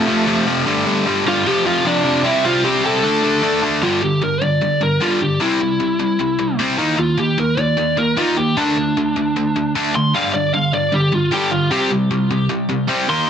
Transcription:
Already playing: A3 A4
0.07 F2 C3 F3
0.27 F2 C3 F3
0.46 F2 C3 F3
0.66 G2 D3 G3
0.86 G2 D3 G3
1.06 G2 D3 G3
1.26 G2 D3 G3 F4 F5
1.46 F2 C3 F3 G4 G5
1.66 F2 C3 F3 F4 F5
1.85 F2 C3 F3 D4 D5
2.05 F2 C3 F3
2.24 C3 G3 C4 E4 E5
2.44 C3 G3 C4 F4 F5
2.64 C3 G3 C4 G4 G5
2.84 C3 G3 C4 A4 A5
3.03 D3 A3 D4
3.23 D3 A3 D4
3.42 D3 A3 D4
3.63 D3 A3 D4
3.82 G2 D3 G3 F4
4.02 G2 D3 G4
4.22 G2 D3 A#4
4.42 G2 D3 D5
4.62 G2 D3
4.81 G2 D3 A#4
5.00 G2 D3 G3 F4
5.21 G2 D3 G4
5.40 C3 G3 C4 E4
5.60 C3 G3
5.80 C3 G3
5.99 C3 G3
6.19 C3 G3
6.39 C3 G3
6.59 C3 G3 C4
6.78 D#3 A#3 D#4
6.98 D#3 A#3 F4
7.18 D#3 A#3 G4
7.38 D#3 A#3 A#4
7.57 D#3 A#3 D5
7.77 D#3 A#3
7.97 D#3 A#3 A#4
8.17 D#3 A#3 D#4 F4
8.37 D#3 A#3 G4
8.57 D3 A3 D4
8.77 D3 A3
8.97 D3 A3
9.16 D3 A3
9.36 D3 A3
9.56 D3 A3
9.75 D3 A3 D4
9.95 D3 A3 C6
10.15 G2 D3 G3 F5
10.34 G2 D3 D5
10.54 G2 D3 F5
10.73 G2 D3 D5
10.92 G2 D3 G4
11.12 G2 D3 F4
11.31 G2 D3 G3 G4
11.51 G2 D3 F4
11.71 C3 G3 C4 G4
11.91 C3 G3
12.11 C3 G3
12.31 C3 G3
12.49 C3 G3
12.70 C3 G3
12.89 C3 G3 C4
13.09 D#3 A#3 D#4 C6

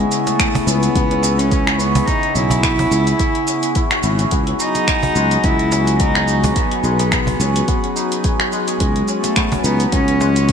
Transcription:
Already playing: C#3 G#3 B3 C#4 E4 G#4 C#5
0.12 C#5, shaker
0.27 A3 G#4, cajon slap, closed hi-hat, shaker
0.40 finger snap, kick, closed hi-hat, shaker
0.55 cajon bass, cajon slap, closed hi-hat
0.67 C#2 B3 C#4, shaker
0.83 closed hi-hat, shaker
0.95 C#2 B3, kick, closed hi-hat, shaker
1.11 C#4, closed hi-hat
1.23 E4, cajon slap, shaker
1.38 C#4, closed hi-hat, shaker
1.51 G#4, kick, closed hi-hat, shaker
1.67 finger snap
1.78 B3 C#5, shaker
1.95 G#4, cajon bass, cajon slap, closed hi-hat, shaker
2.06 D#4, kick, closed hi-hat, shaker
2.23 closed hi-hat
2.34 B1 C#4 E4, shaker
2.50 cajon bass, cajon slap, closed hi-hat, shaker
2.63 B3, finger snap, kick, closed hi-hat, shaker
2.79 C#4, cajon bass, closed hi-hat
2.91 C#2 E4, shaker
3.07 closed hi-hat, shaker
3.19 G#4, kick, closed hi-hat, shaker
3.35 closed hi-hat
3.47 C#4, shaker
3.63 closed hi-hat, shaker
3.75 E4, kick, closed hi-hat, shaker
3.91 F#4, finger snap, closed hi-hat
4.03 G#1 E4, shaker
4.19 C#4, closed hi-hat, shaker
4.31 C#2 F#3 B3 F#4 G#4, kick, closed hi-hat, shaker
4.47 C#4, closed hi-hat
4.60 D#4, shaker
4.75 cajon slap, closed hi-hat, shaker
4.88 G#4, finger snap, kick, closed hi-hat, shaker
5.02 cajon bass, cajon slap, closed hi-hat
5.16 C#2 G#3, shaker
5.31 G#4, closed hi-hat, shaker
5.44 C#2 E4, kick, closed hi-hat, shaker
5.59 closed hi-hat
5.72 C#4, cajon slap, shaker
5.87 closed hi-hat, shaker
6.00 B3 D#4, kick, closed hi-hat, shaker
6.15 C#4, finger snap
6.28 D#4, shaker
6.44 cajon bass, cajon slap, closed hi-hat, shaker
6.56 B3 G#4, kick, closed hi-hat, shaker
6.71 closed hi-hat
6.84 B1 G#3, shaker
6.99 G#4, cajon slap, closed hi-hat, shaker
7.12 finger snap, kick, closed hi-hat, shaker
7.27 cajon bass, closed hi-hat
7.40 C#2 C#4, shaker
7.56 closed hi-hat, shaker
7.68 B3, kick, closed hi-hat, shaker
7.83 C#4, closed hi-hat
7.96 D#4, shaker
8.12 closed hi-hat, shaker
8.24 G#4, kick, closed hi-hat, shaker
8.40 finger snap
8.52 G#3, shaker
8.68 G#4, closed hi-hat, shaker
8.80 C#2 G#3, kick, closed hi-hat, shaker
8.96 closed hi-hat
9.08 C#4, shaker
9.24 A3, cajon slap, closed hi-hat, shaker
9.36 B3, finger snap, kick, closed hi-hat, shaker
9.52 C#4, cajon bass, cajon slap, closed hi-hat
9.64 C#2 B3 D#4, shaker
9.80 closed hi-hat, shaker
9.92 C#2 C#4 G#4, kick, closed hi-hat, shaker
10.08 closed hi-hat
10.21 G#3, cajon slap, shaker
10.36 G#4, closed hi-hat, shaker
10.49 kick, closed hi-hat, shaker

